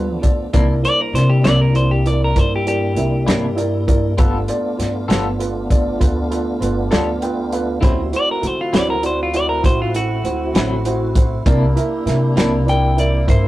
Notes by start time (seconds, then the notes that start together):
Already playing: D2 F3 G3 A3 B3 D4 F4 A4 B4
0.22 F4 A4 D5, kick, closed hi-hat
0.53 C2 C3 G3 A#3 D4 E4 A#4 D5, kick, closed hi-hat
0.82 E4 A#4 C5 D5, closed hi-hat
1.01 A#4
1.13 C3 E4 A#4 C5 D5, snare, closed hi-hat
1.30 G4
1.44 C2 C3 A#3 D4 E4 A#4 D5, snare, closed hi-hat
1.61 A#4
1.74 E4 A#4 C5 D5, closed hi-hat
1.91 G4
2.05 E4 A#4 D5, closed hi-hat
2.24 A#4
2.36 G2 E4 A#4 C5 D5, kick, closed hi-hat
2.56 G4
2.65 E4 G4 A#4 D5, closed hi-hat
2.95 C2 E4 A#4 E5, closed hi-hat
3.26 G2 C3 A#3 D4 E4 A#4 D5, snare, closed hi-hat
3.56 E4 A#4 D5, closed hi-hat
3.87 E4 A#4 D5, kick, closed hi-hat
4.17 G1 G3 A3 B3 D4 F4 A4 B4, kick, closed hi-hat
4.48 F4 A4 D5, closed hi-hat
4.78 G2 F4 A4 D5, snare, closed hi-hat
5.08 G1 G3 B3 F4 A4 B4, snare, closed hi-hat
5.39 F4 A4 B4, closed hi-hat
5.70 F4 A4 D5, kick, closed hi-hat
6.00 D2 F4 A4 B4, kick, closed hi-hat
6.30 F4 A4 B4, closed hi-hat
6.60 G1 F4 A4 B4, closed hi-hat
6.91 D2 G3 B3 F4 A4 D5, snare, closed hi-hat
7.22 F4 A4 B4 G5, closed hi-hat
7.52 F4 A4 B4 F5, closed hi-hat
7.81 D2 C#3 D3 F#3 G3 A#3 C4 E4 F#4 C5, kick, closed hi-hat
8.12 A3 C4 E4 F#4 C5, closed hi-hat
8.16 D5
8.31 A#4
8.41 D3 E4 F#4 A4, closed hi-hat
8.47 C5
8.61 F4
8.73 D2 D3 F#3 C4 E4 F#4 C5 D5, snare, closed hi-hat
8.90 A#4
9.02 E4 F#4 D5, closed hi-hat
9.06 C5
9.23 F4
9.33 E4 F#4 D5, closed hi-hat
9.49 A#4
9.63 A1 E4 F#4 C5, kick, closed hi-hat
9.82 F4
9.94 E4 F#4 A4, closed hi-hat
10.23 D2 E4 F#4 C5, closed hi-hat
10.54 A1 D3 F#3 C4 E4 F#4 C5, snare, closed hi-hat
10.85 E4 F#4 C5, closed hi-hat
11.15 E4 F#4 C5, kick, closed hi-hat
11.45 C2 C3 A#3 D4 E4 G4 A#4 D5, kick, closed hi-hat
11.76 E4 A#4 E5, closed hi-hat
12.06 C3 E4 A#4 E5, snare, closed hi-hat
12.36 C2 C3 A#3 D4 E4 A#4 D5, snare, closed hi-hat
12.66 E4 A#4 D5 G5, closed hi-hat
12.96 E4 A#4 D5 E5, closed hi-hat
13.27 G2 E4 A#4 C5 E5, kick, closed hi-hat